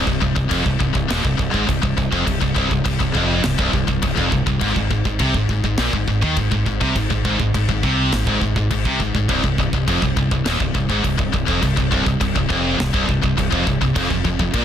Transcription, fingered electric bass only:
0.07 C1
0.22 C1
0.36 C1
0.51 F1
0.66 C1
0.81 C1
0.95 C1
1.10 D#1
1.25 C1
1.39 C1
1.54 G#1
1.69 C1
1.83 C1
1.98 C1
2.12 F1
2.27 C1
2.42 C1
2.56 C1
2.71 C1
2.86 C1
3.00 C1
3.15 F1
3.45 C1
3.59 C1
3.74 C1
3.88 C1
4.03 C1
4.18 F1
4.32 C1
4.47 C1
4.61 G#1
4.76 G#1
4.91 G#1
5.05 G#1
5.20 C2
5.35 G#1
5.49 G#1
5.64 G#1
5.79 A#1
5.93 G#1
6.08 G#1
6.23 D#2
6.37 G#1
6.52 G#1
6.66 G#1
6.81 C2
6.96 G#1
7.11 G#1
7.25 G#1
7.40 G#1
7.54 G#1
7.69 G#1
7.84 C2
8.12 G#1
8.27 G#1
8.41 G#1
8.56 G#1
8.71 G#1
8.85 C2
9.00 G#1
9.15 G#1
9.29 C1
9.44 C1
9.59 C1
9.73 C1
9.88 F1
10.03 C1
10.17 C1
10.31 C1
10.46 D#1
10.60 C1
10.75 C1
10.90 G#1
11.05 C1
11.19 C1
11.34 C1
11.48 F1
11.63 C1
11.77 C1
11.92 C1
12.06 C1
12.21 C1
12.36 C1
12.50 F1
12.79 C1
12.94 C1
13.09 C1
13.24 C1
13.38 C1
13.53 F1
13.67 C1
13.82 C1
13.96 F1
14.11 F1
14.25 F1
14.40 F1
14.54 A#1

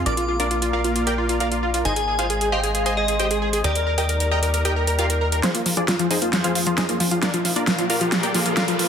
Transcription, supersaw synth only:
0.06 D4 F4 A#4 D5
0.17 F4
0.28 F4
0.40 D4 F4 A#4 D5
0.51 F4
0.62 F4
0.73 F4 A#4 D5 F5
0.84 F4
0.96 F4
1.07 G4 A#4 D5 G5
1.18 F4
1.29 F4
1.40 F4 A#4 D5 F5
1.52 F4
1.63 F4
1.74 F4
1.85 D#4 G#4 C5 D#5
1.96 G#4
2.08 G#4
2.19 F4 G#4 C5 F5
2.30 G#4
2.41 G#4
2.52 G4 C5 D#5 G5
2.64 G#4
2.75 G#4
2.86 G#4 C5 D#5 G#5
2.97 G#4
3.08 G#4
3.20 G4 C5 D#5 G5
3.31 G#4
3.42 G#4
3.53 G#4
3.64 G4 A#4 D#5 G5
3.76 A#4
3.87 A#4
3.98 G4 A#4 D#5 G5
4.09 A#4
4.20 A#4
4.31 A#4 D#5 G5 A#5
4.43 A#4
4.54 A#4
4.65 G4 A#4 D#5 G5
4.76 A#4
4.88 A#4
4.99 F4 G4 A#4 F5
5.10 A#4
5.21 A#4
5.32 A#4
5.43 C4 F4 G#4 C5
5.55 F4
5.66 F4
5.77 D4 F4 G#4 D5
5.88 F4
5.99 F4
6.11 D#4 G#4 C5 D#5
6.22 F4
6.33 F4
6.44 F4 G#4 C5 F5
6.55 F4
6.67 F4
6.78 D#4 G#4 C5 D#5
6.89 F4
7.00 F4
7.11 F4
7.23 D4 F4 A#4 D5
7.34 F4
7.45 F4
7.56 D4 F4 A#4 D5
7.67 F4
7.79 F4
7.90 F4 A#4 D5 F5
8.01 F4
8.12 F4
8.23 G4 A#4 D5 G5
8.35 F4
8.46 F4
8.57 F4 A#4 D5 F5
8.68 F4
8.79 F4

